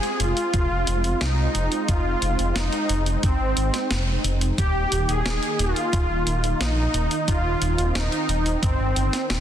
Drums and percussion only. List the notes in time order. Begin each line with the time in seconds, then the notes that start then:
0.03 closed hi-hat
0.20 closed hi-hat
0.37 closed hi-hat
0.54 kick, closed hi-hat
0.87 closed hi-hat
1.04 closed hi-hat
1.21 snare, closed hi-hat
1.55 closed hi-hat
1.72 closed hi-hat
1.88 kick, closed hi-hat
2.22 closed hi-hat
2.39 closed hi-hat
2.56 snare, closed hi-hat
2.73 closed hi-hat
2.89 closed hi-hat
3.06 closed hi-hat
3.23 kick, closed hi-hat
3.57 closed hi-hat
3.74 snare, closed hi-hat
3.91 snare, closed hi-hat
4.24 closed hi-hat
4.41 closed hi-hat
4.58 kick, closed hi-hat
4.92 closed hi-hat
5.09 closed hi-hat
5.26 snare, closed hi-hat
5.43 closed hi-hat
5.59 closed hi-hat
5.76 closed hi-hat
5.93 kick, closed hi-hat
6.27 closed hi-hat
6.44 closed hi-hat
6.61 snare, closed hi-hat
6.94 closed hi-hat
7.11 closed hi-hat
7.28 kick, closed hi-hat
7.62 closed hi-hat
7.78 closed hi-hat
7.95 snare, closed hi-hat
8.12 closed hi-hat
8.29 closed hi-hat
8.46 closed hi-hat
8.63 kick, closed hi-hat
8.96 closed hi-hat
9.13 snare, closed hi-hat
9.30 snare, closed hi-hat